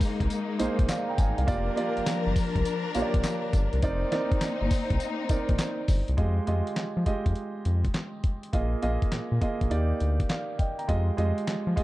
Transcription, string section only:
0.00 1.45 G#3 medium
0.00 1.45 A#3 medium
0.00 1.43 D#4 medium
1.48 3.81 F3 medium
1.48 3.81 D4 medium
1.48 3.81 A#4 medium
3.83 6.16 A#3 medium
3.83 6.16 C4 medium
3.83 6.16 D#4 medium

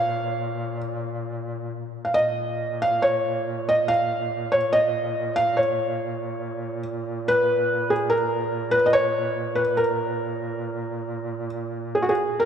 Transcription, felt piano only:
0.00 0.76 F5 medium
2.05 2.13 F5 medium
2.14 2.84 D#5 medium
2.82 3.02 F5 medium
3.02 3.70 C#5 medium
3.69 3.91 D#5 medium
3.88 4.55 F5 medium
4.52 4.75 C#5 medium
4.73 5.33 D#5 medium
5.36 5.59 F5 medium
5.57 6.79 C#5 medium
7.28 7.92 B4 medium
7.90 8.11 G#4 medium
8.10 8.75 A#4 medium
8.71 8.86 B4 medium
8.86 8.94 D#5 medium
8.93 9.59 C#5 loud
9.55 9.78 B4 medium
9.77 11.47 A#4 medium
11.95 12.03 G#4 medium
12.02 12.10 F#4 medium
12.09 12.41 G#4 medium
12.40 12.45 A#4 medium

